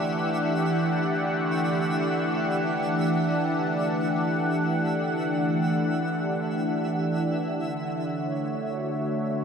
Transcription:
0, 0, Header, 1, 4, 480
1, 0, Start_track
1, 0, Tempo, 500000
1, 9066, End_track
2, 0, Start_track
2, 0, Title_t, "Synth texture"
2, 0, Program_c, 0, 99
2, 0, Note_on_c, 0, 64, 73
2, 0, Note_on_c, 0, 76, 80
2, 7305, Note_off_c, 0, 64, 0
2, 7306, Note_off_c, 0, 76, 0
2, 9066, End_track
3, 0, Start_track
3, 0, Title_t, "Analog synth pad"
3, 0, Program_c, 1, 89
3, 0, Note_on_c, 1, 52, 89
3, 0, Note_on_c, 1, 62, 82
3, 0, Note_on_c, 1, 67, 78
3, 0, Note_on_c, 1, 78, 82
3, 7279, Note_off_c, 1, 67, 0
3, 7279, Note_on_c, 1, 50, 86
3, 7280, Note_off_c, 1, 62, 0
3, 7281, Note_off_c, 1, 52, 0
3, 7713, Note_on_c, 1, 76, 70
3, 7791, Note_on_c, 1, 73, 75
3, 8330, Note_on_c, 1, 66, 64
3, 9066, Note_off_c, 1, 50, 0
3, 9066, Note_off_c, 1, 66, 0
3, 9066, Note_off_c, 1, 73, 0
3, 9066, Note_off_c, 1, 76, 0
3, 9066, Note_off_c, 1, 78, 0
3, 9066, End_track
4, 0, Start_track
4, 0, Title_t, "Synth drone"
4, 0, Program_c, 2, 95
4, 0, Note_on_c, 2, 50, 82
4, 0, Note_on_c, 2, 57, 80
4, 7265, Note_off_c, 2, 57, 0
4, 7273, Note_off_c, 2, 50, 0
4, 7276, Note_on_c, 2, 57, 76
4, 7284, Note_on_c, 2, 50, 78
4, 9066, Note_off_c, 2, 50, 0
4, 9066, Note_off_c, 2, 57, 0
4, 9066, End_track
0, 0, End_of_file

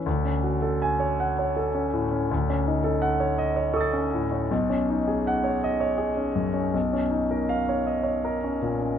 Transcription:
0, 0, Header, 1, 2, 480
1, 0, Start_track
1, 0, Tempo, 764331
1, 34, Time_signature, 3, 2, 24, 8
1, 993, Tempo, 726392
1, 2433, Tempo, 743494
1, 3873, Tempo, 761421
1, 5761, End_track
2, 0, Start_track
2, 0, Title_t, "Grand piano"
2, 0, Program_c, 0, 0
2, 0, Control_c, 0, 64, 127
2, 39, Note_on_c, 0, 38, 54
2, 44, Control_c, 0, 64, 0
2, 145, Control_c, 0, 64, 127
2, 154, Note_on_c, 0, 61, 41
2, 271, Note_on_c, 0, 66, 42
2, 347, Note_off_c, 0, 61, 0
2, 390, Note_on_c, 0, 69, 43
2, 464, Note_off_c, 0, 66, 0
2, 515, Note_on_c, 0, 80, 63
2, 584, Note_off_c, 0, 69, 0
2, 625, Note_on_c, 0, 73, 50
2, 707, Note_off_c, 0, 80, 0
2, 754, Note_on_c, 0, 78, 51
2, 822, Note_off_c, 0, 73, 0
2, 871, Note_on_c, 0, 73, 46
2, 945, Note_off_c, 0, 78, 0
2, 983, Note_on_c, 0, 69, 46
2, 1065, Note_off_c, 0, 73, 0
2, 1100, Note_on_c, 0, 61, 40
2, 1184, Note_off_c, 0, 69, 0
2, 1226, Note_on_c, 0, 45, 43
2, 1302, Note_off_c, 0, 61, 0
2, 1344, Note_on_c, 0, 61, 45
2, 1424, Note_off_c, 0, 45, 0
2, 1454, Note_off_c, 0, 38, 0
2, 1471, Note_off_c, 0, 61, 0
2, 1476, Note_on_c, 0, 38, 57
2, 1489, Control_c, 0, 64, 0
2, 1585, Control_c, 0, 64, 127
2, 1597, Note_on_c, 0, 61, 46
2, 1712, Note_on_c, 0, 63, 47
2, 1790, Note_off_c, 0, 61, 0
2, 1825, Note_on_c, 0, 69, 47
2, 1906, Note_off_c, 0, 63, 0
2, 1942, Note_on_c, 0, 78, 64
2, 2020, Note_off_c, 0, 69, 0
2, 2063, Note_on_c, 0, 73, 53
2, 2138, Note_off_c, 0, 78, 0
2, 2184, Note_on_c, 0, 75, 54
2, 2258, Note_off_c, 0, 73, 0
2, 2302, Note_on_c, 0, 73, 51
2, 2379, Note_off_c, 0, 75, 0
2, 2417, Note_on_c, 0, 85, 41
2, 2418, Note_on_c, 0, 69, 51
2, 2435, Note_on_c, 0, 87, 38
2, 2463, Note_on_c, 0, 93, 41
2, 2499, Note_off_c, 0, 73, 0
2, 2545, Note_on_c, 0, 61, 46
2, 2616, Note_off_c, 0, 69, 0
2, 2676, Note_on_c, 0, 45, 44
2, 2741, Note_off_c, 0, 61, 0
2, 2791, Note_on_c, 0, 61, 45
2, 2870, Note_off_c, 0, 45, 0
2, 2884, Note_off_c, 0, 85, 0
2, 2890, Note_off_c, 0, 38, 0
2, 2893, Note_off_c, 0, 87, 0
2, 2906, Note_off_c, 0, 93, 0
2, 2916, Note_off_c, 0, 61, 0
2, 2917, Note_on_c, 0, 35, 60
2, 2926, Control_c, 0, 64, 0
2, 3037, Control_c, 0, 64, 127
2, 3037, Note_on_c, 0, 61, 47
2, 3169, Note_on_c, 0, 63, 49
2, 3234, Note_off_c, 0, 61, 0
2, 3282, Note_on_c, 0, 68, 50
2, 3357, Note_off_c, 0, 63, 0
2, 3409, Note_on_c, 0, 78, 63
2, 3470, Note_off_c, 0, 68, 0
2, 3517, Note_on_c, 0, 73, 51
2, 3592, Note_off_c, 0, 78, 0
2, 3645, Note_on_c, 0, 75, 58
2, 3705, Note_off_c, 0, 73, 0
2, 3752, Note_on_c, 0, 73, 52
2, 3830, Note_off_c, 0, 75, 0
2, 3865, Note_on_c, 0, 68, 49
2, 3943, Note_off_c, 0, 73, 0
2, 3985, Note_on_c, 0, 61, 43
2, 4058, Note_off_c, 0, 68, 0
2, 4102, Note_on_c, 0, 42, 42
2, 4178, Note_off_c, 0, 61, 0
2, 4217, Note_on_c, 0, 61, 45
2, 4296, Note_off_c, 0, 42, 0
2, 4322, Note_off_c, 0, 35, 0
2, 4342, Note_off_c, 0, 61, 0
2, 4343, Note_on_c, 0, 35, 58
2, 4359, Control_c, 0, 64, 0
2, 4466, Note_on_c, 0, 61, 45
2, 4472, Control_c, 0, 64, 127
2, 4578, Note_on_c, 0, 63, 45
2, 4659, Note_off_c, 0, 61, 0
2, 4703, Note_on_c, 0, 70, 46
2, 4774, Note_off_c, 0, 63, 0
2, 4820, Note_on_c, 0, 77, 62
2, 4895, Note_off_c, 0, 70, 0
2, 4944, Note_on_c, 0, 73, 48
2, 5013, Note_off_c, 0, 77, 0
2, 5055, Note_on_c, 0, 75, 50
2, 5135, Note_off_c, 0, 73, 0
2, 5162, Note_on_c, 0, 73, 44
2, 5252, Note_off_c, 0, 75, 0
2, 5295, Note_on_c, 0, 70, 47
2, 5367, Note_off_c, 0, 73, 0
2, 5417, Note_on_c, 0, 61, 40
2, 5495, Note_off_c, 0, 70, 0
2, 5532, Note_on_c, 0, 46, 41
2, 5618, Note_off_c, 0, 61, 0
2, 5656, Note_on_c, 0, 61, 40
2, 5736, Note_off_c, 0, 46, 0
2, 5761, Note_off_c, 0, 35, 0
2, 5761, Note_off_c, 0, 61, 0
2, 5761, End_track
0, 0, End_of_file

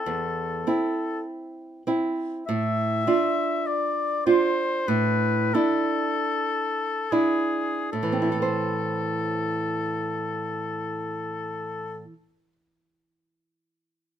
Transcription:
0, 0, Header, 1, 3, 480
1, 0, Start_track
1, 0, Key_signature, 0, "minor"
1, 0, Tempo, 1204819
1, 981, Time_signature, 4, 2, 24, 8
1, 1942, Tempo, 1392111
1, 2422, Tempo, 1662050
1, 2902, Tempo, 1372998
1, 3862, Tempo, 1408451
1, 5063, End_track
2, 0, Start_track
2, 0, Title_t, "Oboe"
2, 0, Program_c, 0, 68
2, 0, Note_on_c, 0, 69, 59
2, 480, Note_off_c, 0, 69, 0
2, 983, Note_on_c, 0, 76, 62
2, 1461, Note_on_c, 0, 74, 49
2, 1467, Note_off_c, 0, 76, 0
2, 1695, Note_off_c, 0, 74, 0
2, 1697, Note_on_c, 0, 72, 55
2, 1945, Note_on_c, 0, 71, 60
2, 1950, Note_off_c, 0, 72, 0
2, 2172, Note_on_c, 0, 69, 62
2, 2177, Note_off_c, 0, 71, 0
2, 2666, Note_on_c, 0, 68, 45
2, 2671, Note_off_c, 0, 69, 0
2, 2898, Note_off_c, 0, 68, 0
2, 2900, Note_on_c, 0, 69, 37
2, 4321, Note_off_c, 0, 69, 0
2, 5063, End_track
3, 0, Start_track
3, 0, Title_t, "Nylon-string guitar"
3, 0, Program_c, 1, 24
3, 25, Note_on_c, 1, 40, 37
3, 254, Note_off_c, 1, 40, 0
3, 267, Note_on_c, 1, 60, 31
3, 269, Note_on_c, 1, 64, 33
3, 725, Note_off_c, 1, 60, 0
3, 725, Note_off_c, 1, 64, 0
3, 745, Note_on_c, 1, 60, 29
3, 747, Note_on_c, 1, 64, 30
3, 969, Note_off_c, 1, 60, 0
3, 969, Note_off_c, 1, 64, 0
3, 991, Note_on_c, 1, 45, 47
3, 1217, Note_off_c, 1, 45, 0
3, 1224, Note_on_c, 1, 62, 31
3, 1226, Note_on_c, 1, 65, 37
3, 1680, Note_off_c, 1, 62, 0
3, 1681, Note_off_c, 1, 65, 0
3, 1699, Note_on_c, 1, 62, 29
3, 1700, Note_on_c, 1, 65, 35
3, 1928, Note_off_c, 1, 62, 0
3, 1928, Note_off_c, 1, 65, 0
3, 1944, Note_on_c, 1, 45, 45
3, 2163, Note_off_c, 1, 45, 0
3, 2173, Note_on_c, 1, 62, 35
3, 2175, Note_on_c, 1, 64, 36
3, 2656, Note_off_c, 1, 62, 0
3, 2656, Note_off_c, 1, 64, 0
3, 2668, Note_on_c, 1, 62, 30
3, 2669, Note_on_c, 1, 64, 32
3, 2890, Note_off_c, 1, 62, 0
3, 2890, Note_off_c, 1, 64, 0
3, 2902, Note_on_c, 1, 45, 33
3, 2936, Note_on_c, 1, 52, 30
3, 2970, Note_on_c, 1, 60, 31
3, 3003, Note_on_c, 1, 64, 27
3, 3037, Note_off_c, 1, 64, 0
3, 3038, Note_on_c, 1, 69, 28
3, 3073, Note_off_c, 1, 69, 0
3, 3074, Note_on_c, 1, 72, 31
3, 4324, Note_off_c, 1, 45, 0
3, 4358, Note_off_c, 1, 52, 0
3, 4391, Note_off_c, 1, 60, 0
3, 4492, Note_off_c, 1, 72, 0
3, 5063, End_track
0, 0, End_of_file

